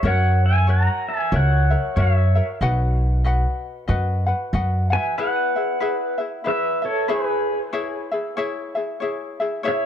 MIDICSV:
0, 0, Header, 1, 4, 480
1, 0, Start_track
1, 0, Key_signature, 5, "major"
1, 0, Tempo, 641026
1, 28, Time_signature, 4, 2, 24, 8
1, 3874, Key_signature, 4, "major"
1, 7382, End_track
2, 0, Start_track
2, 0, Title_t, "Pedal steel guitar"
2, 0, Program_c, 0, 26
2, 52, Note_on_c, 0, 73, 75
2, 58, Note_on_c, 0, 78, 99
2, 309, Note_off_c, 0, 73, 0
2, 340, Note_off_c, 0, 78, 0
2, 341, Note_on_c, 0, 76, 64
2, 343, Note_on_c, 0, 80, 86
2, 509, Note_off_c, 0, 76, 0
2, 520, Note_off_c, 0, 80, 0
2, 523, Note_on_c, 0, 78, 73
2, 526, Note_on_c, 0, 82, 95
2, 785, Note_off_c, 0, 78, 0
2, 813, Note_on_c, 0, 76, 67
2, 815, Note_off_c, 0, 82, 0
2, 820, Note_on_c, 0, 80, 79
2, 985, Note_off_c, 0, 76, 0
2, 1007, Note_off_c, 0, 80, 0
2, 1017, Note_on_c, 0, 73, 74
2, 1018, Note_on_c, 0, 78, 81
2, 1455, Note_off_c, 0, 73, 0
2, 1496, Note_off_c, 0, 78, 0
2, 1499, Note_on_c, 0, 76, 72
2, 1504, Note_on_c, 0, 73, 55
2, 1844, Note_off_c, 0, 76, 0
2, 1846, Note_off_c, 0, 73, 0
2, 3693, Note_on_c, 0, 80, 95
2, 3702, Note_on_c, 0, 76, 74
2, 3871, Note_off_c, 0, 76, 0
2, 3877, Note_off_c, 0, 80, 0
2, 3880, Note_on_c, 0, 78, 98
2, 3886, Note_on_c, 0, 71, 79
2, 4615, Note_off_c, 0, 78, 0
2, 4618, Note_off_c, 0, 71, 0
2, 4846, Note_on_c, 0, 71, 71
2, 4855, Note_on_c, 0, 76, 96
2, 5108, Note_off_c, 0, 71, 0
2, 5127, Note_on_c, 0, 69, 59
2, 5133, Note_on_c, 0, 73, 84
2, 5141, Note_off_c, 0, 76, 0
2, 5304, Note_off_c, 0, 69, 0
2, 5321, Note_off_c, 0, 73, 0
2, 5321, Note_on_c, 0, 68, 62
2, 5324, Note_on_c, 0, 71, 74
2, 5675, Note_off_c, 0, 68, 0
2, 5675, Note_off_c, 0, 71, 0
2, 7246, Note_on_c, 0, 73, 67
2, 7252, Note_on_c, 0, 76, 96
2, 7382, Note_off_c, 0, 73, 0
2, 7382, Note_off_c, 0, 76, 0
2, 7382, End_track
3, 0, Start_track
3, 0, Title_t, "Ukulele"
3, 0, Program_c, 1, 24
3, 28, Note_on_c, 1, 73, 69
3, 32, Note_on_c, 1, 66, 80
3, 36, Note_on_c, 1, 70, 82
3, 39, Note_on_c, 1, 76, 79
3, 493, Note_off_c, 1, 73, 0
3, 502, Note_on_c, 1, 73, 61
3, 504, Note_off_c, 1, 70, 0
3, 506, Note_off_c, 1, 66, 0
3, 508, Note_off_c, 1, 76, 0
3, 509, Note_on_c, 1, 66, 62
3, 513, Note_on_c, 1, 70, 62
3, 517, Note_on_c, 1, 76, 68
3, 976, Note_off_c, 1, 73, 0
3, 985, Note_on_c, 1, 73, 50
3, 988, Note_off_c, 1, 70, 0
3, 990, Note_off_c, 1, 66, 0
3, 991, Note_off_c, 1, 76, 0
3, 993, Note_on_c, 1, 66, 58
3, 997, Note_on_c, 1, 70, 55
3, 1000, Note_on_c, 1, 76, 60
3, 1267, Note_off_c, 1, 76, 0
3, 1274, Note_off_c, 1, 70, 0
3, 1276, Note_off_c, 1, 73, 0
3, 1276, Note_on_c, 1, 76, 49
3, 1280, Note_off_c, 1, 66, 0
3, 1283, Note_on_c, 1, 70, 49
3, 1289, Note_on_c, 1, 66, 49
3, 1466, Note_off_c, 1, 66, 0
3, 1467, Note_on_c, 1, 73, 65
3, 1470, Note_off_c, 1, 70, 0
3, 1470, Note_off_c, 1, 76, 0
3, 1475, Note_on_c, 1, 66, 68
3, 1479, Note_on_c, 1, 70, 67
3, 1485, Note_on_c, 1, 76, 68
3, 1752, Note_off_c, 1, 76, 0
3, 1757, Note_off_c, 1, 73, 0
3, 1761, Note_off_c, 1, 66, 0
3, 1761, Note_on_c, 1, 76, 52
3, 1763, Note_off_c, 1, 70, 0
3, 1771, Note_on_c, 1, 70, 51
3, 1776, Note_on_c, 1, 66, 41
3, 1953, Note_off_c, 1, 66, 0
3, 1953, Note_off_c, 1, 76, 0
3, 1956, Note_on_c, 1, 75, 82
3, 1958, Note_off_c, 1, 70, 0
3, 1962, Note_on_c, 1, 66, 88
3, 1963, Note_on_c, 1, 71, 86
3, 1966, Note_on_c, 1, 78, 99
3, 2421, Note_off_c, 1, 75, 0
3, 2426, Note_off_c, 1, 66, 0
3, 2430, Note_on_c, 1, 75, 59
3, 2434, Note_off_c, 1, 71, 0
3, 2435, Note_off_c, 1, 78, 0
3, 2435, Note_on_c, 1, 66, 68
3, 2437, Note_on_c, 1, 71, 68
3, 2444, Note_on_c, 1, 78, 73
3, 2893, Note_off_c, 1, 75, 0
3, 2900, Note_off_c, 1, 66, 0
3, 2902, Note_on_c, 1, 75, 67
3, 2909, Note_off_c, 1, 78, 0
3, 2909, Note_on_c, 1, 66, 64
3, 2910, Note_off_c, 1, 71, 0
3, 2913, Note_on_c, 1, 71, 76
3, 2918, Note_on_c, 1, 78, 62
3, 3184, Note_off_c, 1, 78, 0
3, 3193, Note_off_c, 1, 71, 0
3, 3193, Note_on_c, 1, 78, 55
3, 3196, Note_off_c, 1, 75, 0
3, 3199, Note_off_c, 1, 66, 0
3, 3202, Note_on_c, 1, 71, 54
3, 3210, Note_on_c, 1, 66, 53
3, 3390, Note_off_c, 1, 66, 0
3, 3390, Note_off_c, 1, 78, 0
3, 3394, Note_off_c, 1, 71, 0
3, 3396, Note_on_c, 1, 75, 72
3, 3399, Note_on_c, 1, 66, 76
3, 3403, Note_on_c, 1, 71, 70
3, 3406, Note_on_c, 1, 78, 75
3, 3661, Note_off_c, 1, 78, 0
3, 3670, Note_on_c, 1, 78, 54
3, 3675, Note_off_c, 1, 71, 0
3, 3676, Note_off_c, 1, 66, 0
3, 3683, Note_off_c, 1, 75, 0
3, 3684, Note_on_c, 1, 71, 51
3, 3685, Note_on_c, 1, 66, 46
3, 3868, Note_off_c, 1, 71, 0
3, 3868, Note_off_c, 1, 78, 0
3, 3876, Note_off_c, 1, 66, 0
3, 3877, Note_on_c, 1, 71, 74
3, 3881, Note_on_c, 1, 64, 77
3, 3885, Note_on_c, 1, 68, 72
3, 3887, Note_on_c, 1, 76, 79
3, 4152, Note_off_c, 1, 76, 0
3, 4159, Note_off_c, 1, 68, 0
3, 4161, Note_on_c, 1, 76, 53
3, 4163, Note_off_c, 1, 64, 0
3, 4163, Note_off_c, 1, 71, 0
3, 4168, Note_on_c, 1, 68, 42
3, 4172, Note_on_c, 1, 64, 42
3, 4342, Note_off_c, 1, 64, 0
3, 4344, Note_off_c, 1, 68, 0
3, 4346, Note_on_c, 1, 71, 71
3, 4349, Note_off_c, 1, 76, 0
3, 4351, Note_on_c, 1, 64, 73
3, 4353, Note_on_c, 1, 68, 74
3, 4358, Note_on_c, 1, 76, 74
3, 4618, Note_off_c, 1, 76, 0
3, 4626, Note_off_c, 1, 68, 0
3, 4627, Note_on_c, 1, 76, 50
3, 4635, Note_on_c, 1, 68, 43
3, 4636, Note_off_c, 1, 64, 0
3, 4638, Note_off_c, 1, 71, 0
3, 4645, Note_on_c, 1, 64, 40
3, 4816, Note_off_c, 1, 64, 0
3, 4823, Note_on_c, 1, 71, 53
3, 4825, Note_off_c, 1, 68, 0
3, 4825, Note_on_c, 1, 64, 63
3, 4827, Note_off_c, 1, 76, 0
3, 4834, Note_on_c, 1, 68, 62
3, 4835, Note_on_c, 1, 76, 65
3, 5097, Note_off_c, 1, 76, 0
3, 5106, Note_on_c, 1, 76, 54
3, 5111, Note_off_c, 1, 64, 0
3, 5116, Note_off_c, 1, 71, 0
3, 5120, Note_on_c, 1, 64, 45
3, 5122, Note_off_c, 1, 68, 0
3, 5296, Note_off_c, 1, 64, 0
3, 5303, Note_on_c, 1, 71, 80
3, 5305, Note_on_c, 1, 64, 81
3, 5306, Note_off_c, 1, 76, 0
3, 5311, Note_on_c, 1, 68, 95
3, 5314, Note_on_c, 1, 76, 81
3, 5783, Note_off_c, 1, 71, 0
3, 5786, Note_off_c, 1, 64, 0
3, 5786, Note_on_c, 1, 73, 89
3, 5787, Note_off_c, 1, 68, 0
3, 5789, Note_on_c, 1, 64, 94
3, 5790, Note_on_c, 1, 68, 90
3, 5791, Note_off_c, 1, 76, 0
3, 5794, Note_on_c, 1, 76, 91
3, 6068, Note_off_c, 1, 76, 0
3, 6076, Note_off_c, 1, 68, 0
3, 6077, Note_off_c, 1, 73, 0
3, 6077, Note_on_c, 1, 76, 55
3, 6079, Note_off_c, 1, 64, 0
3, 6085, Note_on_c, 1, 68, 54
3, 6092, Note_on_c, 1, 64, 45
3, 6263, Note_off_c, 1, 64, 0
3, 6264, Note_off_c, 1, 68, 0
3, 6266, Note_on_c, 1, 73, 89
3, 6268, Note_off_c, 1, 76, 0
3, 6272, Note_on_c, 1, 64, 82
3, 6273, Note_on_c, 1, 68, 97
3, 6277, Note_on_c, 1, 76, 98
3, 6543, Note_off_c, 1, 76, 0
3, 6551, Note_off_c, 1, 68, 0
3, 6552, Note_on_c, 1, 76, 50
3, 6557, Note_off_c, 1, 73, 0
3, 6558, Note_off_c, 1, 64, 0
3, 6560, Note_on_c, 1, 68, 48
3, 6567, Note_on_c, 1, 64, 43
3, 6740, Note_on_c, 1, 73, 61
3, 6742, Note_off_c, 1, 64, 0
3, 6745, Note_off_c, 1, 68, 0
3, 6749, Note_off_c, 1, 76, 0
3, 6751, Note_on_c, 1, 64, 75
3, 6754, Note_on_c, 1, 68, 69
3, 6761, Note_on_c, 1, 76, 64
3, 7029, Note_off_c, 1, 76, 0
3, 7034, Note_off_c, 1, 73, 0
3, 7035, Note_off_c, 1, 68, 0
3, 7038, Note_on_c, 1, 76, 62
3, 7039, Note_off_c, 1, 64, 0
3, 7044, Note_on_c, 1, 68, 57
3, 7049, Note_on_c, 1, 64, 54
3, 7210, Note_off_c, 1, 64, 0
3, 7213, Note_on_c, 1, 73, 82
3, 7217, Note_off_c, 1, 68, 0
3, 7218, Note_off_c, 1, 76, 0
3, 7219, Note_on_c, 1, 64, 90
3, 7226, Note_on_c, 1, 68, 93
3, 7227, Note_on_c, 1, 76, 93
3, 7382, Note_off_c, 1, 64, 0
3, 7382, Note_off_c, 1, 68, 0
3, 7382, Note_off_c, 1, 73, 0
3, 7382, Note_off_c, 1, 76, 0
3, 7382, End_track
4, 0, Start_track
4, 0, Title_t, "Upright bass"
4, 0, Program_c, 2, 32
4, 22, Note_on_c, 2, 42, 99
4, 649, Note_off_c, 2, 42, 0
4, 989, Note_on_c, 2, 37, 103
4, 1302, Note_off_c, 2, 37, 0
4, 1473, Note_on_c, 2, 42, 103
4, 1785, Note_off_c, 2, 42, 0
4, 1953, Note_on_c, 2, 35, 92
4, 2577, Note_off_c, 2, 35, 0
4, 2910, Note_on_c, 2, 42, 94
4, 3223, Note_off_c, 2, 42, 0
4, 3391, Note_on_c, 2, 42, 90
4, 3704, Note_off_c, 2, 42, 0
4, 7382, End_track
0, 0, End_of_file